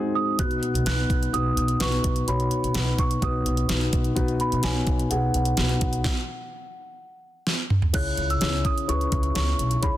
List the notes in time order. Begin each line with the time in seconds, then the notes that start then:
Already playing: G#2 G#3 C4 D#4 F#4 G#4
0.15 D#6
0.39 B1 B2 B3 D#4 F#4 B4 F#6, kick, closed hi-hat
0.51 closed hi-hat
0.63 closed hi-hat
0.74 B1, closed hi-hat
0.85 B1 B3 D#4 F#4 B4 F#6, snare, closed hi-hat
1.10 B1, kick, closed hi-hat
1.23 closed hi-hat
1.33 B1 B3 D#4 F#4 B4 D#6, closed hi-hat
1.57 B1, closed hi-hat
1.68 closed hi-hat
1.80 B1 B3 D#4 F#4 B4 C#6, snare, closed hi-hat
1.92 closed hi-hat
2.04 B1, kick, closed hi-hat
2.16 closed hi-hat
2.27 B1 B2 B3 D#4 F#4 C#5 B5, closed hi-hat
2.40 closed hi-hat
2.51 closed hi-hat
2.63 B1, closed hi-hat
2.74 B1 B3 D#4 F#4 B4, snare, closed hi-hat
2.98 B1 C#6, kick, closed hi-hat
3.11 closed hi-hat
3.22 B1 B3 D#4 F#4 B4 D#6, kick, closed hi-hat
3.46 B1, closed hi-hat
3.57 closed hi-hat
3.68 B1 B3 D#4 F#4 B4, snare, closed hi-hat
3.81 closed hi-hat
3.93 B1, kick, closed hi-hat
4.04 closed hi-hat
4.15 B1 B2 B3 D#4 F#4 B4, kick, closed hi-hat
4.28 closed hi-hat
4.40 B5, closed hi-hat
4.52 B1, closed hi-hat
4.62 B1 B3 D#4 F#4 C#5 G#5, snare, closed hi-hat
4.87 B1, kick, closed hi-hat
4.99 closed hi-hat
5.10 B1 B3 D#4 F#4 G#4 F#5, closed hi-hat
5.34 B1, closed hi-hat
5.45 closed hi-hat
5.57 B1 B3 D#4 F#4 B4, snare, closed hi-hat
5.69 closed hi-hat
5.81 B1, kick, closed hi-hat
5.93 closed hi-hat
6.04 kick, snare
7.47 snare
7.70 mid tom
7.82 floor tom
7.93 C#2 C#3 C#4 E4 G#4 C#5 F#6, kick, closed hi-hat, crash
8.17 C#2, closed hi-hat
8.30 E6, closed hi-hat
8.41 C#2 C#4 E4 G#4 C#5, snare, closed hi-hat
8.65 C#3 D#6, kick, closed hi-hat
8.78 closed hi-hat
8.88 C#2 C#4 E4 G#4 B4 C#6, closed hi-hat
9.01 closed hi-hat
9.12 C#2, kick, closed hi-hat
9.23 closed hi-hat
9.35 C#2 C#4 E4 G#4 C#5 C#6, snare, closed hi-hat
9.59 B1, closed hi-hat
9.71 closed hi-hat
9.82 C#2 C#3 C#4 E4 G#4 C#5 B5, kick, closed hi-hat